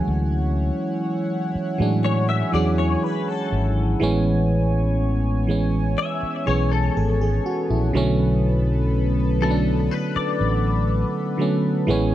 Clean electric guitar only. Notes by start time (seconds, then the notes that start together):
2.05 C#5
2.29 E5
2.54 D5
2.78 C#5
3.03 B4
3.28 A4
5.98 E5
6.47 C#5
6.72 A4
9.42 A4
9.91 B4
10.16 D5